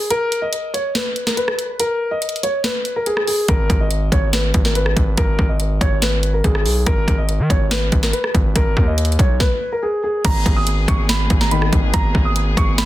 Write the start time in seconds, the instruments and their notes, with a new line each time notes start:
0.10 grand piano A#4, closed hi-hat
0.32 closed hi-hat
0.42 grand piano D#5
0.53 closed hi-hat
0.74 grand piano C#5, closed hi-hat
0.95 grand piano B4, snare, closed hi-hat
1.16 closed hi-hat
1.27 grand piano A#4, snare
1.37 grand piano B4, closed hi-hat
1.48 cross-stick
1.59 closed hi-hat
1.80 grand piano A#4, closed hi-hat
2.11 grand piano D#5
2.22 closed hi-hat
2.29 closed hi-hat
2.36 closed hi-hat
2.43 grand piano C#5, closed hi-hat
2.64 grand piano B4, snare, closed hi-hat
2.85 closed hi-hat
2.96 grand piano A#4
3.06 grand piano G#4, closed hi-hat
3.17 cross-stick
3.27 grand piano G#4, open hi-hat
3.48 808-style bass G#1, grand piano A#4, kick, closed hi-hat
3.70 808-style bass G#1, kick, closed hi-hat
3.80 grand piano D#5
3.91 closed hi-hat
4.12 808-style bass G#1, grand piano C#5, kick, closed hi-hat
4.33 grand piano B4, snare, closed hi-hat
4.54 808-style bass G#1, kick, closed hi-hat
4.65 grand piano A#4, snare
4.75 grand piano B4, closed hi-hat
4.86 cross-stick
4.97 808-style bass G#1, kick, closed hi-hat
5.17 808-style bass G#1, grand piano A#4, kick, closed hi-hat
5.39 808-style bass G#1, kick
5.49 grand piano D#5
5.60 closed hi-hat
5.81 808-style bass G#1, grand piano C#5, kick, closed hi-hat
6.02 grand piano B4, snare, closed hi-hat
6.23 closed hi-hat
6.34 grand piano A#4
6.44 808-style bass G#1, grand piano G#4, kick, closed hi-hat
6.55 cross-stick
6.66 808-style bass B1, grand piano G#4, open hi-hat
6.86 808-style bass G#1, grand piano A#4, kick, closed hi-hat
7.08 808-style bass G#1, kick, closed hi-hat
7.18 grand piano D#5
7.29 closed hi-hat
7.39 808-style bass D#3
7.50 808-style bass G#1, grand piano C#5, kick, closed hi-hat
7.71 grand piano B4, snare, closed hi-hat
7.92 808-style bass G#1, kick, closed hi-hat
8.03 grand piano A#4, snare
8.13 grand piano B4, closed hi-hat
8.24 cross-stick
8.35 808-style bass G#1, kick, closed hi-hat
8.56 808-style bass G#1, grand piano A#4, kick, closed hi-hat
8.77 808-style bass D#2, kick
8.87 grand piano D#5
8.98 closed hi-hat
9.05 closed hi-hat
9.12 closed hi-hat
9.19 808-style bass B1, grand piano C#5, kick, closed hi-hat
9.40 grand piano B4, kick, snare
9.72 grand piano A#4
9.82 grand piano G#4
10.04 grand piano G#4
10.25 808-style bass G#1, string section A#3 B3 G#4, grand piano A#5, kick, closed hi-hat, crash
10.46 808-style bass G#1, kick, closed hi-hat
10.56 grand piano D#6
10.67 closed hi-hat
10.88 808-style bass G#1, grand piano C#6, kick, closed hi-hat
11.09 grand piano B5, snare, closed hi-hat
11.30 808-style bass G#1, kick, closed hi-hat
11.41 grand piano A#5, snare
11.51 brass ensemble D#2 B2 D#3, grand piano B5, closed hi-hat
11.62 cross-stick
11.73 808-style bass G#1, kick, closed hi-hat
11.94 808-style bass G#1, grand piano A#5, kick, closed hi-hat
12.15 808-style bass G#1, kick
12.25 grand piano D#6
12.36 closed hi-hat
12.57 808-style bass G#1, grand piano C#6, kick, closed hi-hat
12.78 grand piano B5, snare, closed hi-hat